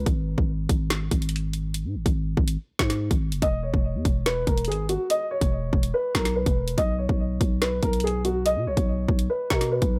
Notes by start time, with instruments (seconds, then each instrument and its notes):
0.06 808-style bass G#1, kick, closed hi-hat
0.38 808-style bass G#1, kick
0.69 808-style bass G#1, kick, closed hi-hat
0.90 snare, closed hi-hat
1.11 808-style bass G#1, kick, closed hi-hat
1.22 closed hi-hat
1.29 closed hi-hat
1.36 closed hi-hat
1.53 closed hi-hat
1.74 closed hi-hat
1.85 808-style bass G#2
1.95 808-style bass G#1
2.06 808-style bass G#1, kick, closed hi-hat
2.37 808-style bass G#1, kick
2.48 closed hi-hat
2.79 808-style bass G#2, kick, snare
2.90 snare, closed hi-hat
3.11 808-style bass G#1, kick, closed hi-hat
3.32 808-style bass F#1, closed hi-hat
3.42 808-style bass E1, grand piano D#5, kick, closed hi-hat
3.63 grand piano C#5
3.74 808-style bass E1, kick
3.95 808-style bass E2
4.05 808-style bass E1, kick, closed hi-hat
4.26 grand piano B4, snare, closed hi-hat
4.47 808-style bass E1, grand piano A#4, kick, closed hi-hat
4.58 closed hi-hat
4.65 808-style bass G#1, grand piano G#4, closed hi-hat
4.72 closed hi-hat
4.89 grand piano F#4, closed hi-hat
5.10 grand piano D#5, closed hi-hat
5.31 grand piano C#5
5.41 808-style bass E1, kick, closed hi-hat
5.73 808-style bass E1, kick
5.83 closed hi-hat
5.94 grand piano B4
6.15 808-style bass B1, grand piano A#4, kick, snare
6.25 snare, closed hi-hat
6.36 grand piano B4
6.46 808-style bass E1, kick, closed hi-hat
6.68 closed hi-hat
6.77 808-style bass B1, grand piano D#5, kick, closed hi-hat
6.98 grand piano C#5
7.09 808-style bass B1, kick
7.41 808-style bass B1, kick, closed hi-hat
7.61 grand piano B4, snare, closed hi-hat
7.83 808-style bass B1, grand piano A#4, kick, closed hi-hat
7.93 closed hi-hat
8.00 grand piano G#4, closed hi-hat
8.07 closed hi-hat
8.25 grand piano F#4, closed hi-hat
8.46 grand piano D#5, closed hi-hat
8.56 808-style bass B2
8.67 808-style bass B1, grand piano C#5
8.77 808-style bass B1, kick, closed hi-hat
9.08 808-style bass B1, kick
9.19 closed hi-hat
9.30 grand piano B4
9.50 808-style bass B2, grand piano A#4, kick, snare
9.61 snare, closed hi-hat
9.72 grand piano B4
9.82 808-style bass B1, kick, closed hi-hat